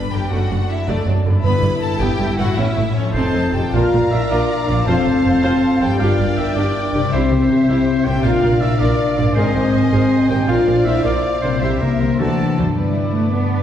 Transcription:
Already playing: G2 B3 D4 G4 B4 D5 B5
0.13 G1 F#2 G2 D3 G4 G5
0.19 A3
0.23 A4
0.28 F#4 D5
0.32 F#1 F#2 A3 F#5
0.50 F#1 F#2 F#3
0.69 E4 E5
0.87 F#1 F#2 A3 D4 D5
1.06 F#1 F#2 F#3
1.25 F#1 F#2 G2 D3
1.30 B3
1.35 E4
1.39 B4 E5
1.44 G1 G2 B3 E4 B5
1.62 G1 G2 G3
1.81 A4 A5
1.99 G1 G2 B3 G4 G5
2.19 G1 G2 G3
2.37 G1 G2 A2 E3 F#4 F#5
2.44 C#4
2.48 E4
2.53 A2 E4 E5
2.57 A1 C#4 E5
2.76 A1 A2 A3
2.95 F2 C#4 C#5
3.02 C4
3.06 F4
3.11 C4 A4 C5 D#5 A5
3.15 F1 F2 C4 D#4
3.34 F1 F2 A3
3.53 F1 F2 A#2 F3 G4 G5
3.60 A#3
3.64 F4
3.69 F4 D5
3.73 A#1 A#2 F4 A#4 D5 F5 A#5
3.93 A#1 A#2 A#4
4.11 A#1 A#2 E4 A#4 D5 E5
4.30 A#1 A#2 D4 F4 A#4 D5
4.68 A#1 F2 A#2 D4 A#4 D5
4.74 A3
4.78 F4
4.83 C5
4.87 F1 F2 C4 F4 A4 C5 F5 A5
5.06 F1 F2 A4 C5
5.25 F1 F2 C5
5.43 F1 F2 C4 F4 C5
5.81 F1 F2 G2 G4 C5 G5
5.87 G3
5.91 D4
5.96 G2 A#4 D5 F5 G5
6.00 G1 D4 F4 G4 A#4 D5 F5
6.19 G1 G2 G4
6.37 G1 G2 E4 G4 A#4 E5
6.55 G1 G2 D4 G4 D5
6.93 G1 G2 C3 D4 G4 A#4 D5
6.99 G3
7.04 E4
7.08 C3 C5 E5
7.12 C2 C4 E4 G4 C5 E5
7.31 C2 C3 G4
7.50 C2 C3 G4 C5
7.68 C2 C3 C4 E4 G4 C5
8.05 C2 A#2 C3 G4 C5 G5
8.11 A#3
8.15 D4
8.20 A#1 D5 F5
8.24 A#2 F4 A#4 D5 F5
8.42 A#1 A#2 A#4
8.61 A#1 A#2 E4 A#4 D5 E5
8.79 A#1 A#2 D4 F4 A#4 D5
9.17 A#1 G#2 A#2 D4 A#4 D5
9.23 A#3
9.27 D#4
9.32 G#1 A#4 C5 D#5 G#5
9.36 G#2 C4 G#4 C5 D#5
9.54 G#1 G#2 A#4
9.73 G#1 G#2 A#4 C5
9.91 G#1 G#2 C4 G#4 A#4 C5
10.29 G#1 G#2 A#2 G4 A#4 C5 G5
10.35 A#3
10.39 D4
10.44 A#1 F4 A#4 C5
10.48 A#2 F4 C5 D5 F5
10.67 A#1 A#2 A#4
10.85 A#1 A#2 E4 A#4 C5 E5
11.04 A#1 A#2 D4 F4 A#4 D5
11.42 A#1 A#2 C3 C4 A#4 C5
11.48 G3
11.53 E4
11.57 C5 E5
11.61 C2 C3 C4 E4 G4 C5 E5
11.80 C2 C3 A#3 G4 A#4
12.00 C2 C3 D3 G4 C5
12.06 F#3
12.10 D4
12.15 A4 C5
12.19 D2 D3 E3 A3 F#4 A4 D5 F#5 A5
12.57 D2 G2 D3 F#3 F#4 C5
12.64 B3
12.68 D4
12.73 G2 G3 D5
12.77 B3 D4 E4 B4 D5
12.96 D4 B4 D5
13.14 A3 B3 B4 D5
13.32 B3 D4 B4 D5
13.52 B3 B4 D5

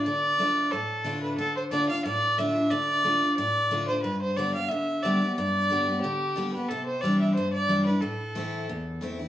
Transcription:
0.05 D3 D5
0.39 D3 A3 D4 F4
0.71 A2 A4
1.04 D3 A3 D4 F4
1.23 B4
1.38 D3 A4
1.57 C5
1.71 D3 A3 D4 F4 D5
1.89 D4 F4 F5
2.05 A2 D5
2.38 D3 A3 D4 F4 E5
2.56 D4 F4
2.71 D3 D5
3.04 D3 A3 D4 F4
3.22 D4 F4
3.37 A2 D5
3.71 D3 A3 D4 F4
3.88 D4 F4 C5
4.03 G2 B4
4.22 C5
4.37 D3 G3 B3 G4 D5
4.54 B3 G4 F5
4.69 D3 E5
5.03 D3 G3 B3 G4 D5
5.22 B3 G4
5.36 G2 D5
5.70 D3 G3 B3 G4
5.88 B3 G4
6.01 D3 G4
6.36 D3 G3 B3 G4
6.54 B3 G4 B4
6.69 C3 A4
6.86 C5
7.02 E3 G3 D4 E4 D5
7.20 E5
7.34 G2 C5
7.54 D5
7.68 E3 G3 D4 E4
7.86 D4 E4 B4
8.01 A2 A4
8.35 E3 A3 C4 E4
8.69 E2
9.01 E3 A3 C4 E4
9.19 C4 E4

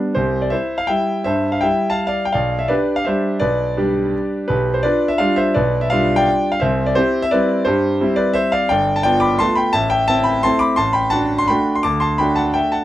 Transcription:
Already playing: G3 B3 D4
0.15 C2 G4 C5
0.42 D5
0.50 E4 C5 E5
0.78 F5
0.87 G3 E4 E5 G5
1.24 G2 C5 E5
1.52 F5
1.61 G3 E4 E5 G5
1.90 F5 A5
2.07 D5 F5
2.25 G5
2.32 B1 D5 F5
2.59 E5
2.68 D4 G4 B4 D5
2.96 F5
3.05 G3 D4 G4 C5 E5
3.40 B1 B4 D5
3.77 G3 D4 G4
4.48 B1 G4 B4
4.74 C5
4.83 D4 F4 B4 D5
5.08 E5
5.18 G3 D4 F4 D5 F5
5.36 C5 E5
5.54 B1 B4 D5
5.81 E5
5.90 G3 D4 F4 D5 F5
6.16 D5 G5
6.52 F5
6.60 C2 C5 E5
6.86 D5
6.95 C4 E4 G4 C5
7.22 E5
7.31 G3 C4 E4 B4 D5
7.65 G2 G4 C5
8.01 G3 C4 E4
8.16 B4 D5
8.33 C5 E5
8.52 D5 F5
8.69 G1 D5 G5
8.96 A5
9.03 B3 F4 D5 G5
9.20 B5 D6
9.39 A3 B3 F4 A5 C6
9.55 G5 B5
9.73 A1 E5 A5
9.90 E5 G5
10.08 C4 E4 E5 A5
10.24 G5 B5
10.43 A3 C4 E4 A5 C6
10.59 B5 D6
10.76 A1 A5 C6
10.93 G5 B5
11.10 D4 F#4 F#5 A5
11.38 C6
11.48 A3 D4 F#4 G5 B5
11.75 C6
11.83 D2 A5 D6
12.00 A5 C6
12.18 A3 D4 F#4 G5 B5
12.36 F#5 A5
12.54 E5 G5
12.72 F#5 A5

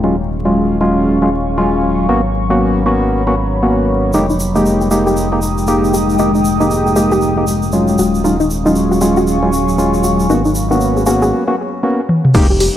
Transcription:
Already playing: D#1 F#3 G#3 C#4 D#4 G#4 F5 A#5 C#6
0.04 F#3 G#3 C#4 F4
0.45 F#3 G#3 C#4 F4
0.81 F#3 G#3 C#4 F4 G#5
1.22 F#3 G#3 C#4 F4
1.58 F#3 G#3 C#4 F4
2.09 G#1 A#3 B3 C#4 F#4 A#5 B5
2.50 A#3 B3 C#4 F#4
2.76 C#5
2.86 A#3 B3 C#4 F#4
3.27 A#3 B3 C#4 F#4
3.63 A#3 B3 C#4 F#4
4.13 F1 G#3 A#3 D#4 G4 G5 A#5 D#6, shaker
4.30 G#3 D#4, shaker
4.40 shaker
4.55 G#3 A#3 D#4 G4, shaker
4.66 G5, shaker
4.81 G4, shaker
4.91 G#3 A#3 D#4 G4, shaker
5.07 G4, shaker
5.17 shaker
5.32 G#3 A#3 D#4 G4
5.42 shaker
5.58 shaker
5.67 G#3 A#3 D#4 G4, shaker
5.84 shaker
5.94 G4, shaker
6.09 shaker
6.19 G#3 A#3 D#4 G4, shaker
6.35 D#4, shaker
6.45 shaker
6.60 G#3 A#3 D#4 G4, shaker
6.71 shaker
6.86 G4, shaker
6.96 G#3 A#3 D#4 G4, shaker
7.12 G4, shaker
7.21 shaker
7.37 G#3 A#3 D#4 G4
7.47 shaker
7.62 shaker
7.72 F#3 G#3 C#4 F4, shaker
7.88 shaker
7.98 D#1 F#3 C#4 F#4 F5 G#5 C#6, shaker
8.15 F#3, shaker
8.24 F#3 G#3 C#4 D#4 F4, shaker
8.40 D#4, shaker
8.47 F5, shaker
8.65 F#3 G#3 C#4 D#4 F4, shaker
8.75 shaker
8.91 F#4, shaker
9.01 F#3 G#3 C#4 F4 F#4 G#5, shaker
9.17 F#4, shaker
9.27 shaker
9.42 F#3 G#3 C#4 F4
9.53 shaker
9.69 shaker
9.78 F#3 G#3 C#4 F4, shaker
9.94 shaker
10.04 F#4, shaker
10.20 shaker
10.29 G#1 A#3 B3 C#4 D#4 F#4 C#5 A#5 B5, shaker
10.45 D#4, shaker
10.51 C#5, shaker
10.71 A#3 B3 C#4 D#4 F#4, shaker
10.81 shaker
10.97 G#4, shaker
11.06 A#3 B3 C#4 F#4 G#4, shaker
11.22 G#4, shaker
11.47 A#3 B3 C#4 F#4
11.83 A#3 B3 C#4 F#4
12.09 high tom
12.25 mid tom
12.34 F1 G#3 A#3 D#4 G4 G5 A#5, kick, crash, ride, shaker
12.50 G#3 G4
12.60 G4, open hi-hat, ride, shaker

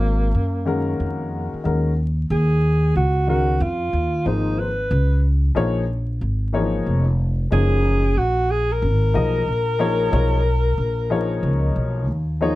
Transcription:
Already playing: G#1 A#3
0.34 F#2
0.66 D#3 G#3 C#4 F#4 A#4
1.00 F2
1.54 muted upright bass stroke
1.64 D#2 D#3 G#3 C#4 F#4 A#4
2.30 D#2 G#4
2.95 C#2 F#4
3.27 D#3 G#3 C#4 F#4 A#4
3.60 F2 F4
3.93 D#2
4.25 G#1 F3 A#3 D#4 G#4 C5
4.59 B4
4.91 C#2
5.55 A#1 F3 A#3 D#4 G#4 C#5
6.21 G#1
6.53 E3 A#3 D#4 G#4 C#5
6.59 F3
6.86 F1
7.50 F#1 F3 A#3 D#4 G#4 C#5
8.17 A#1 F#4
8.51 G#4
8.72 A#4
8.82 G#1
9.14 B1 F3 A#3 D#4 G#4 D#5
9.48 A#1
9.79 F3 A#3 D#4 G#4 C#5
10.11 B1 F3 A#3 D#4 G#4 C#5
10.78 A#1
11.10 F3 A#3 D#4 G#4 C#5
11.43 C#2
11.76 B1
12.08 D#2
12.41 F3 A#3 D#4 G#4 C#5

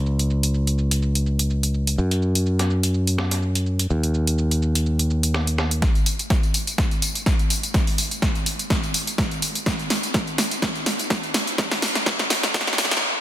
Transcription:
Already playing: C#2
0.06 shaker
0.19 closed hi-hat
0.30 shaker
0.43 closed hi-hat
0.54 shaker
0.67 closed hi-hat
0.78 shaker
0.91 closed hi-hat
1.02 shaker
1.15 closed hi-hat
1.26 shaker
1.39 closed hi-hat
1.50 shaker
1.63 closed hi-hat
1.74 shaker
1.87 closed hi-hat
1.98 F#2, shaker
2.11 closed hi-hat
2.22 shaker
2.35 closed hi-hat
2.46 shaker
2.59 snare, closed hi-hat
2.70 shaker
2.83 closed hi-hat
2.94 shaker
3.07 closed hi-hat
3.18 snare, shaker
3.31 snare, closed hi-hat
3.42 shaker
3.55 closed hi-hat
3.66 shaker
3.79 closed hi-hat
3.90 D#2, shaker
4.03 closed hi-hat
4.14 shaker
4.27 closed hi-hat
4.38 shaker
4.51 closed hi-hat
4.62 shaker
4.75 closed hi-hat
4.86 shaker
4.99 closed hi-hat
5.10 shaker
5.23 closed hi-hat
5.34 snare, shaker
5.47 closed hi-hat
5.58 snare, shaker
5.71 closed hi-hat
5.82 kick, snare, closed hi-hat, tambourine
5.95 closed hi-hat, tambourine
6.06 open hi-hat, tambourine
6.19 closed hi-hat, tambourine
6.30 kick, snare, closed hi-hat, tambourine
6.43 closed hi-hat, tambourine
6.54 open hi-hat, tambourine
6.67 closed hi-hat, tambourine
6.78 kick, snare, closed hi-hat, tambourine
6.91 closed hi-hat, tambourine
7.02 open hi-hat, tambourine
7.15 closed hi-hat, tambourine
7.26 kick, snare, closed hi-hat, tambourine
7.39 closed hi-hat, tambourine
7.50 open hi-hat, tambourine
7.63 closed hi-hat, tambourine
7.74 kick, snare, closed hi-hat, tambourine
7.87 open hi-hat, tambourine
7.98 open hi-hat, tambourine
8.11 closed hi-hat, tambourine
8.22 kick, snare, closed hi-hat, tambourine
8.35 closed hi-hat, tambourine
8.46 open hi-hat, tambourine
8.59 closed hi-hat, tambourine
8.70 kick, snare, closed hi-hat, tambourine
8.83 closed hi-hat, tambourine
8.94 open hi-hat, tambourine
9.07 closed hi-hat, tambourine
9.18 kick, snare, closed hi-hat, tambourine
9.31 closed hi-hat, tambourine
9.42 open hi-hat, tambourine
9.55 closed hi-hat, tambourine
9.66 kick, snare, closed hi-hat, tambourine
9.79 closed hi-hat, tambourine
9.90 snare, open hi-hat, tambourine
10.03 closed hi-hat, tambourine
10.14 kick, snare, closed hi-hat, tambourine
10.27 closed hi-hat, tambourine
10.38 snare, open hi-hat, tambourine
10.51 closed hi-hat, tambourine
10.62 kick, snare, closed hi-hat, tambourine
10.75 closed hi-hat, tambourine
10.86 snare, open hi-hat, tambourine
10.99 closed hi-hat, tambourine
11.10 kick, snare, closed hi-hat, tambourine
11.23 closed hi-hat, tambourine
11.34 snare, open hi-hat, tambourine
11.47 closed hi-hat, tambourine
11.58 kick, snare, closed hi-hat, tambourine
11.71 snare, open hi-hat, tambourine
11.82 snare, open hi-hat, tambourine
11.95 snare, closed hi-hat, tambourine
12.06 kick, snare, closed hi-hat, tambourine
12.19 snare, closed hi-hat, tambourine
12.30 snare, open hi-hat, tambourine
12.43 snare, closed hi-hat, tambourine
12.54 kick, snare, closed hi-hat, tambourine
12.61 snare
12.67 snare, closed hi-hat, tambourine
12.73 snare
12.78 snare, open hi-hat, tambourine
12.85 snare
12.91 snare, closed hi-hat, tambourine
12.97 snare

